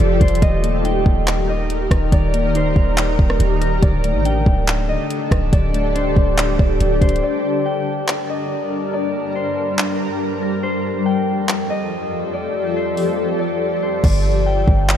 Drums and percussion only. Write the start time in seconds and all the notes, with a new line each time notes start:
0.21 kick, closed hi-hat
0.28 closed hi-hat
0.35 closed hi-hat
0.42 kick, closed hi-hat
0.64 closed hi-hat
0.85 closed hi-hat
1.06 kick
1.27 clap, closed hi-hat
1.70 closed hi-hat
1.91 kick, cross-stick, closed hi-hat
2.12 kick, closed hi-hat
2.34 closed hi-hat
2.55 closed hi-hat
2.76 kick
2.97 clap, closed hi-hat
3.19 kick
3.30 cross-stick
3.40 closed hi-hat
3.62 closed hi-hat
3.83 kick, closed hi-hat
4.04 closed hi-hat
4.25 closed hi-hat
4.46 kick
4.68 clap, closed hi-hat
5.10 closed hi-hat
5.31 kick, cross-stick, closed hi-hat
5.53 kick, closed hi-hat
5.74 closed hi-hat
5.96 closed hi-hat
6.17 kick
6.38 clap, closed hi-hat
6.59 kick
6.80 closed hi-hat
7.01 kick, closed hi-hat
7.09 closed hi-hat
7.16 closed hi-hat
8.08 clap
9.79 clap
11.49 clap
12.97 open hi-hat
14.04 kick, crash
14.68 kick
14.89 clap